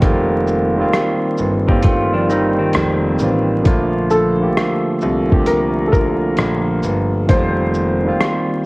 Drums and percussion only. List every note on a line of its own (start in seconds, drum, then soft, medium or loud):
0.02 kick loud
0.02 closed hi-hat medium
0.47 shaker soft
0.93 cross-stick loud
0.93 closed hi-hat medium
1.38 shaker soft
1.69 kick medium
1.83 kick medium
1.83 closed hi-hat medium
2.30 shaker soft
2.73 cross-stick loud
2.73 closed hi-hat medium
3.19 shaker soft
3.65 kick loud
3.65 closed hi-hat medium
4.11 shaker soft
4.57 cross-stick loud
4.57 closed hi-hat soft
5.01 shaker soft
5.32 kick medium
5.46 closed hi-hat medium
5.93 kick medium
5.93 shaker soft
6.37 cross-stick loud
6.37 closed hi-hat medium
6.83 shaker soft
7.29 kick loud
7.29 closed hi-hat medium
7.74 shaker soft
8.21 cross-stick loud
8.21 closed hi-hat medium